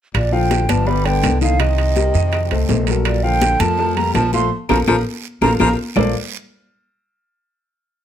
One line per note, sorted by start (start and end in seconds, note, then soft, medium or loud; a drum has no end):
0.14 0.65 A#1 medium
0.14 0.34 A#2 medium
0.14 0.34 D5 medium
0.14 high bongo medium
0.14 high conga soft
0.14 high timbale loud
0.14 long guiro medium
0.14 claves medium
0.32 0.70 D3 medium
0.32 0.62 F3 medium
0.32 0.63 F4 medium
0.32 0.63 F5 medium
0.32 0.71 G5 medium
0.32 high bongo soft
0.32 high conga soft
0.51 high bongo medium
0.51 high conga medium
0.51 high timbale medium
0.51 low timbale medium
0.51 short guiro medium
0.69 1.20 G1 medium
0.69 0.88 F3 medium
0.69 0.84 B3 medium
0.69 0.84 B4 medium
0.69 0.84 D5 medium
0.69 0.88 A5 medium
0.69 high bongo soft
0.69 high conga medium
0.69 high timbale medium
0.69 short guiro medium
0.69 claves medium
0.87 1.07 G3 medium
0.87 1.02 B3 medium
0.87 1.02 B4 medium
0.87 1.02 D5 medium
0.87 1.07 B5 medium
0.87 high bongo medium
0.87 high conga soft
0.87 long guiro medium
1.05 1.41 D3 medium
1.05 1.35 B3 medium
1.05 1.35 B4 medium
1.05 1.35 D5 medium
1.05 1.42 G5 medium
1.05 high conga soft
1.05 high timbale medium
1.23 2.09 C2 medium
1.23 high bongo soft
1.23 low bongo medium
1.23 high conga medium
1.23 high timbale medium
1.23 low timbale medium
1.23 short guiro medium
1.23 claves medium
1.41 1.61 D3 medium
1.41 1.56 D#3 medium
1.41 1.57 D#4 medium
1.41 1.57 D#5 medium
1.41 1.62 F5 medium
1.41 high bongo soft
1.41 high conga medium
1.41 short guiro medium
1.59 2.87 C3 medium
1.59 1.90 D#3 medium
1.59 1.90 D#4 medium
1.59 2.87 D#5 medium
1.59 1.90 D#5 medium
1.59 high bongo medium
1.59 high conga soft
1.59 high timbale loud
1.59 long guiro medium
1.59 claves medium
1.78 high bongo soft
1.78 high conga soft
1.78 high timbale medium
1.96 2.11 G3 medium
1.96 2.12 G4 medium
1.96 2.12 A#4 medium
1.96 high bongo medium
1.96 high conga medium
1.96 low timbale medium
1.96 short guiro medium
2.14 2.48 F2 medium
2.14 2.44 D#3 medium
2.14 2.45 D#4 medium
2.14 2.45 D#5 medium
2.14 high bongo soft
2.14 high conga soft
2.14 short guiro medium
2.32 high bongo medium
2.32 high conga soft
2.32 high timbale medium
2.32 long guiro medium
2.32 claves medium
2.51 2.68 C2 medium
2.51 2.66 A3 medium
2.51 2.66 A4 medium
2.51 2.66 C5 medium
2.51 high conga soft
2.51 high timbale medium
2.69 3.54 A#1 medium
2.69 2.84 A3 medium
2.69 2.84 A4 medium
2.69 2.85 C5 medium
2.69 high bongo soft
2.69 low bongo medium
2.69 high conga medium
2.69 low timbale medium
2.69 short guiro medium
2.87 3.17 F#3 medium
2.87 3.18 A4 medium
2.87 3.18 A#4 medium
2.87 high bongo soft
2.87 high conga soft
2.87 high timbale medium
2.87 short guiro medium
3.05 3.26 A#2 medium
3.05 3.25 D5 medium
3.05 high bongo medium
3.05 high conga soft
3.05 high timbale loud
3.05 long guiro medium
3.05 claves medium
3.23 3.62 D3 medium
3.23 3.53 F3 medium
3.23 3.54 F4 medium
3.23 3.54 F5 medium
3.23 3.62 G5 loud
3.23 high bongo soft
3.23 high conga soft
3.41 high bongo medium
3.41 high conga loud
3.41 high timbale medium
3.41 low timbale medium
3.41 short guiro medium
3.60 4.11 F2 medium
3.60 3.98 F3 medium
3.60 3.75 A3 medium
3.60 3.75 A4 medium
3.60 3.75 A#4 medium
3.60 3.98 A5 loud
3.60 high bongo soft
3.60 high conga loud
3.60 high timbale medium
3.60 short guiro medium
3.60 claves medium
3.78 3.93 A3 medium
3.78 3.93 A4 medium
3.78 3.94 A#4 medium
3.78 high bongo medium
3.78 high conga soft
3.78 long guiro medium
3.97 4.15 G3 medium
3.97 4.27 A#3 medium
3.97 4.27 A4 medium
3.97 4.27 A#4 medium
3.97 4.14 A#5 medium
3.97 high conga soft
3.97 high timbale medium
4.15 4.49 A#1 medium
4.15 4.32 F3 medium
4.15 4.32 A5 loud
4.15 high bongo soft
4.15 low bongo medium
4.15 high conga medium
4.15 high timbale medium
4.15 low timbale medium
4.15 short guiro medium
4.15 claves medium
4.33 4.48 F3 medium
4.33 4.50 A3 medium
4.33 4.48 F4 medium
4.33 4.48 F5 medium
4.33 4.50 C6 loud
4.33 high bongo soft
4.33 high conga medium
4.33 short guiro medium
4.69 4.83 A#1 medium
4.69 4.78 F3 medium
4.69 4.81 F4 medium
4.69 4.81 A4 medium
4.69 4.81 A#4 loud
4.69 4.81 A#5 medium
4.69 high bongo medium
4.69 high conga medium
4.69 high timbale loud
4.69 long guiro medium
4.69 claves loud
4.87 5.01 A#1 loud
4.87 4.97 F3 medium
4.87 4.99 F4 medium
4.87 4.99 A4 medium
4.87 4.99 A#4 medium
4.87 4.99 A#5 medium
4.87 high bongo medium
4.87 high conga loud
4.87 high timbale loud
4.87 long guiro loud
4.87 claves loud
5.41 5.55 A#1 medium
5.41 5.51 F3 medium
5.41 5.54 F4 medium
5.41 5.54 A4 loud
5.41 5.54 A#4 medium
5.41 5.54 A#5 medium
5.41 high bongo medium
5.41 high conga medium
5.41 high timbale loud
5.41 long guiro medium
5.41 claves loud
5.60 5.74 A#1 medium
5.60 5.69 F3 loud
5.60 5.72 F4 loud
5.60 5.71 A4 medium
5.60 5.72 A#4 medium
5.60 5.72 A#5 loud
5.60 high bongo medium
5.60 high conga loud
5.60 high timbale loud
5.60 long guiro medium
5.60 claves medium
5.96 6.13 A#1 medium
5.96 6.13 A#3 medium
5.96 6.13 F4 medium
5.96 6.13 A4 medium
5.96 6.13 A#4 medium
5.96 6.13 C5 medium
5.96 6.13 D5 loud
5.96 low bongo medium
5.96 low conga medium
5.96 low timbale loud
5.96 long guiro medium
5.96 claves loud